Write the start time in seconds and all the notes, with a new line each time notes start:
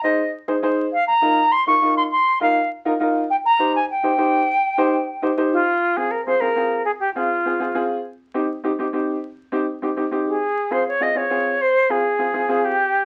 0.03 D#4 G#4 C5 D#5
0.48 D#4 G#4 C5
0.62 D#4 G#4 C5
0.93 F5
1.07 A#5
1.22 D#4 F4 A#4
1.52 C6
1.67 D#4 F4 A#4 C#6
1.82 D#4 F4 A#4
1.97 C6
2.12 C6
2.41 D#4 F4 A#4 F5
2.85 D#4 F4 A#4
3.00 D#4 F4 A#4
3.30 G5
3.45 A#5
3.59 D#4 G4 C5
3.76 G#5
3.91 G5
4.03 D#4 G4 C5
4.18 D#4 G4 C5
4.78 D#4 G4 C5
5.22 D#4 G4 C5
5.37 D#4 G4 C5
5.53 F4
5.97 C4 F4 G#4
6.11 A#4
6.25 C4 F4 G#4 C5
6.41 C4 F4 G#4 A#4
6.56 C4 F4 G#4
6.85 G#4
7.00 G4
7.15 C4 F4 G#4
7.45 C4 F4 G#4
7.60 C4 F4 G#4
7.75 C4 F4 G#4
8.34 C4 D#4 G4
8.64 C4 D#4 G4
8.79 C4 D#4 G4
8.93 C4 D#4 G4
9.52 C4 D#4 G4
9.82 C4 D#4 G4
9.97 C4 D#4 G4
10.11 C4 D#4 G4
10.28 G#4
10.71 C4 F4 G#4 C5
10.88 C#5
11.00 C4 F4 G#4 D#5
11.15 C4 F4 G#4 C#5
11.30 C4 F4 G#4
11.61 C5
11.89 C4 F4 G#4
12.19 C4 F4 G#4
12.34 C4 F4 G#4
12.49 C4 F4 G#4
12.65 G4